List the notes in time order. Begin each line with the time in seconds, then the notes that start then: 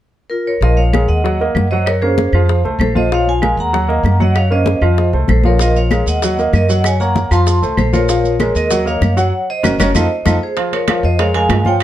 0.30 F4 A#4
0.47 A#4 C#5
0.61 A#1 F3 F4 A#4 D#5 F5, high bongo, high conga
0.77 C#5 F5, high conga
0.93 G#3 G#4 A#4, high bongo, high conga, claves
1.08 D#2 D#5 F#5, high bongo, high conga
1.24 F#3 F#4 F#5, high bongo, high conga
1.40 A#3 A#4 D#5, high bongo, high conga
1.55 F#2, high bongo, low bongo, high conga, claves
1.71 F#3 F#4 C5 D#5 F#5, high bongo
1.86 A#4 C#5, high bongo, high conga, claves
2.02 A#3 C#4 G#4 A#4 C5, high conga
2.18 high bongo, high conga
2.33 F2 F3 F4 F5, high bongo, high conga, claves
2.49 high bongo, high conga
2.65 A3 A4 C5, high bongo, high conga
2.79 A#1 A4 C5, high bongo, low bongo, high conga, claves
2.95 F3 F4 C5 D#5 F5, high bongo, high conga
3.12 F3 F4 C#5 F5, high bongo, high conga
3.27 F5 G#5, high conga
3.42 G#3 G#4 A#4, high bongo, high conga, claves
3.57 D#2 F#5 A#5, high bongo, high conga
3.73 F#3 F#4 F#5, high bongo, high conga
3.88 A#3 A#4 D#5, high bongo, high conga
4.04 F#2, high bongo, low bongo, high conga, claves
4.20 F#3 F#4 D#5 F#5, high bongo, high conga
4.35 C#5 F5, high bongo, high conga, claves
4.50 A#3 C#4 A#4 C5 D#5, high conga
4.66 high bongo, high conga
4.81 F2 F3 F4 F5, high bongo, high conga, claves
4.98 high bongo, high conga
5.13 C2 A3 A4 C5, high bongo, high conga
5.28 A#1 A4 C5, high bongo, low bongo, high conga, claves
5.44 F3 F4 A#4 C#5 F5, high bongo, high conga
5.59 F3 F4 A#4 D#5 F5, high bongo, high conga, maracas
5.76 C#5 F5, high conga, maracas
5.91 G#3 G#4 A#4, high bongo, high conga, claves, maracas
6.06 D#2 D#5 F#5, high bongo, high conga, maracas
6.22 F#3 F#4 F#5, high bongo, high conga, maracas
6.37 A#3 A#4 D#5, high bongo, high conga, maracas
6.53 F#2 A#4 D#5, high bongo, low bongo, high conga, claves, maracas
6.68 F#3 F#4 D#5 F#5, high bongo, maracas
6.84 C#5 G#5, high bongo, high conga, claves, maracas
7.00 A#3 A#4 C#5 F#5 A#5, high conga, maracas
7.16 high bongo, high conga, maracas
7.31 F2 F3 F4 F5 A5 C6, high bongo, high conga, claves, maracas
7.47 high bongo, high conga, maracas
7.62 C2 A3 A4 C5, high bongo, high conga, maracas
7.77 A#1 A4 C5, high bongo, low bongo, high conga, claves, maracas
7.93 F3 F4 A#4 C#5 F5, high bongo, high conga, maracas
8.09 F3 F4 F5, high bongo, high conga, maracas
8.24 high conga, maracas
8.40 G#3 G#4 A#4, high bongo, high conga, claves, maracas
8.55 D#2 A#4 D#5, high bongo, high conga, maracas
8.71 F#3 F#4 F#5, high bongo, high conga, maracas
8.85 A#3 A#4 C#5 D#5 F5, high bongo, high conga, maracas
9.01 F#2, high bongo, low bongo, high conga, claves, maracas
9.17 F#3 F#4 C#5 F#5, high bongo, maracas
9.50 C5 D#5
9.63 F#1 C#4 F#4 A#4, low bongo, high conga, claves, maracas
9.79 F#1 C#4 F#4 A#4 C#5, low bongo, high conga, claves, maracas
9.94 F2 D#4 F4 A4 C5 D#5, low bongo, high conga, claves, maracas
10.25 F2 D#4 F4 A4, low bongo, high conga, claves, maracas
10.43 G#4 C5
10.57 F3 F4 F5, high bongo, high conga, high timbale
10.73 A#4 C#5, high conga, high timbale
10.88 F3 F4 F5, high bongo, high conga, high timbale, low timbale, claves
11.03 F2 C5 D#5, high bongo, high conga
11.19 G#3 G#4 A#4 C#5 F5, high bongo, high conga, high timbale
11.34 G#3 G#4 A#4 F5 G#5, high bongo, high conga, high timbale
11.49 G2, high bongo, low bongo, high conga, high timbale, low timbale, claves
11.65 F3 F4 C#5 F5 G5, high bongo, high conga